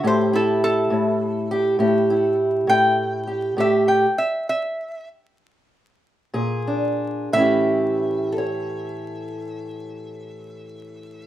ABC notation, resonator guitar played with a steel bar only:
X:1
M:12/8
L:1/8
Q:3/8=64
K:Amix
V:1 name="Resonator guitar played with a steel bar"
=c A A6 z g3 | e g e e2 z6 z | e12 |]